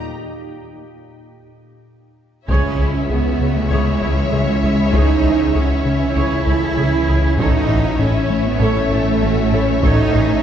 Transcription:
2.48 C#2 E3 C#4 E4 G#4 C#5 E5, taiko
2.79 C#2 E4 G#4
3.09 C#2 G#3 B3 F#4 G#4
3.40 C#3
3.57 A3
3.70 C#2 G#3 E4 G#4 C#5
4.02 C#2 E4 G#4
4.31 C#2 C#3 F#4 G#4
4.62 C#2 E4 G#4
4.93 C#2 D#4 G#4 C#5, taiko
5.23 C#2 E3 G#4
5.55 C#2 C#4 F#4 G#4
5.85 C#3 E4
6.15 C#2 E4 G#4 C#5
6.46 C#2 E4 G#4 A4
6.77 C#2 C#3 G#4
7.07 C#2 E4 G#4
7.38 A1 A2 E3 A3 C#4 D#4 F#4 A4 C#5 E5, taiko
7.69 A1 A2 E3 A4
7.99 A1 A2 C#4 E4 A4
8.30 A3
8.47 B3
8.60 A1 A2 A3 A4 C#5
8.91 A1 A2 E4 A4
9.21 A1 A3 F#4 A4
9.53 A1 A2 E4 A4 C#5
9.83 A1 A2 D#4 F#4 A4 C#5, taiko
10.13 A1 A2 E3 A3 G#4

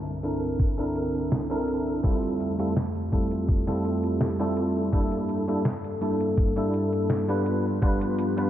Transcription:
Already playing: C2 G2 D3 A5
0.06 closed hi-hat
0.23 C4 D4 E4 A4 A#4, closed hi-hat
0.43 closed hi-hat
0.59 kick, closed hi-hat
0.78 C4 D4 E4 A4 A#4, closed hi-hat
0.96 closed hi-hat
1.15 closed hi-hat
1.32 snare, closed hi-hat
1.50 C4 D4 E4 A4 A#4, closed hi-hat
1.68 closed hi-hat
2.03 F2 G3 A3 C4 E4 F4 G4 A4, kick, closed hi-hat
2.23 closed hi-hat
2.40 closed hi-hat
2.58 G3 C4 E4 F4 A4, closed hi-hat
2.77 snare, closed hi-hat
2.95 closed hi-hat
3.12 G3 C4 E4 F4 A4, kick, closed hi-hat
3.31 closed hi-hat
3.49 kick, closed hi-hat
3.67 G3 C4 E4 F4 A4, snare, closed hi-hat
3.85 closed hi-hat
4.04 closed hi-hat
4.21 snare, closed hi-hat
4.39 G3 C4 E4 F4 A4, closed hi-hat
4.57 closed hi-hat
4.92 G2 G3 A#3 D4 E4 A4, kick, closed hi-hat
5.12 closed hi-hat
5.29 closed hi-hat
5.48 G3 A#3 D4 E4 A4, closed hi-hat
5.65 snare, closed hi-hat
5.84 closed hi-hat
6.01 G3 A#3 D4 E4 A4, closed hi-hat
6.20 closed hi-hat
6.37 kick, closed hi-hat
6.56 G3 A#3 D4 E4 A4, closed hi-hat
6.74 closed hi-hat
6.93 closed hi-hat
7.10 snare, closed hi-hat
7.28 G3 B3 D4 F4 B4, closed hi-hat
7.46 F3 B3 G4, closed hi-hat
7.82 G3 B3 D4 F4 B4, kick, closed hi-hat
8.01 closed hi-hat
8.18 closed hi-hat
8.37 G3 B3 D4 F4 B4, closed hi-hat

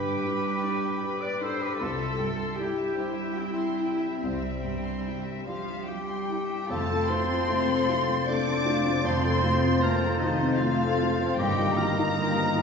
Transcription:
Already playing: G2 D3 G3 D4 G4 B4 G5
0.07 D6
0.25 G3 B5
0.45 G5
0.62 D4 D5
0.83 G5
1.01 G4 B5
1.21 B4 D5 D6
1.41 D4 A4 C5 B5
1.60 G4 B4 G5
1.78 C2 G3 F4 A4 C5 E5
1.99 E5
2.18 G2 G5
2.36 C6
2.56 G3 E4 G4 G5
2.76 E5
2.96 E4 C5
3.16 E5
3.35 C4 E4 G5
3.39 G4
3.56 C6
3.78 E4 G5
3.98 E5
4.19 C2 G3 C4 C5
4.39 E5
4.61 G2 G5
4.82 C6
5.04 G3 G5
5.24 E5
5.46 F3 F4 G4 C5 F5
5.67 E5
5.86 G3 G4 G5
6.09 C6
6.27 E4 G5
6.47 E5
6.67 F1 F2 F3 A3 C4 F4 A4 C5 A5 A6
6.89 F3 C4 A4
7.07 A3 C4 F4 C5 C6
7.27 F3 C4 A4
7.48 A3 F4
7.67 F3 C4 A4
7.87 A3 F4
8.07 F3 C4 A4
8.25 A3 D4 D5 D6
8.30 A3 F4
8.46 F3 C4 A4
8.65 A3 F4
8.84 F3 C4 A4
9.03 F2 A3 C4 F4 C5 C6
9.23 F3 C4 A4
9.42 A3 F4
9.62 F3 C4 A4
9.81 A3 A#3 C4 F4 A#4 A#5
10.02 F3 C4 A4
10.20 D#3 A3 D#4 F4 D#5
10.24 F4
10.41 F3 C4 A4
10.57 A3 F4 F5
10.62 F3 A3 F4
10.83 F3 C4 A4
11.02 A3 F4
11.20 F3 C4 A4
11.36 G1 G2 D#3 G3 A#3 F4 G4 D#5 G5 A#6
11.58 F3 G3 D#4 G4 A#4
11.74 D#3 A#3 F4 A#4 A#5
11.78 F4 G4
11.97 F3 G3 D#4 G4
12.15 D#3 A#3 F4 G4
12.35 F3 G3 D#4 G4 A#4
12.54 D#3 A#3 F4 G4

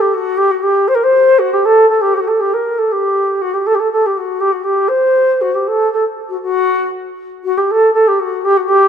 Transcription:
0.01 G4
0.14 F#4
0.37 G4
0.51 F#4
0.63 G4
0.88 C5
0.95 A#4
1.03 C5
1.39 F#4
1.53 G4
1.65 A4
1.89 A4
2.01 G4
2.14 F#4 G4
2.19 F#4
2.28 A4
2.40 G4
2.53 A#4
2.78 A4
2.92 G4
3.41 F#4
3.54 G4
3.66 A4
3.74 G4
3.79 A4
3.92 A4
4.06 G4
4.17 F#4
4.40 G4
4.52 F#4
4.64 G4
4.88 C5
5.41 F#4
5.54 G4
5.67 A4
5.93 A4
6.29 F#4
6.42 F#4
7.44 F#4
7.57 G4
7.71 A4
7.93 A4
8.07 G4
8.20 F#4
8.45 G4
8.57 F#4
8.68 G4

